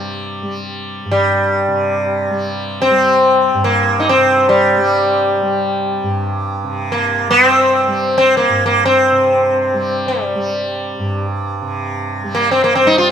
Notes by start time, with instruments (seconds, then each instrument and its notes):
Already playing: tanpura G2 C3 G3
0.43 tanpura G3
1.06 tanpura G2
1.11 sitar G3
1.68 tanpura C3
2.30 tanpura G3
2.82 sitar C4
2.91 tanpura G3
3.54 tanpura G2
3.64 sitar A#3
4.00 sitar D#4
4.09 sitar C4
4.17 tanpura C3
4.49 sitar G3
4.77 tanpura G3
5.41 tanpura G3
6.03 tanpura G2
6.64 tanpura C3
6.92 sitar A#3
7.28 tanpura G3, sitar B3
7.46 sitar C4
7.88 tanpura G3
8.18 sitar C4
8.37 sitar A#3
8.49 tanpura G2
8.66 sitar A#3
8.85 sitar C4
9.12 tanpura C3
9.74 tanpura G3
10.08 sitar G3
10.35 tanpura G3
10.99 tanpura G2
11.62 tanpura C3
12.24 tanpura G3
12.35 sitar A#3
12.51 sitar C4
12.64 sitar A#3
12.75 sitar C4
12.85 tanpura G3, sitar D#4
12.98 sitar F4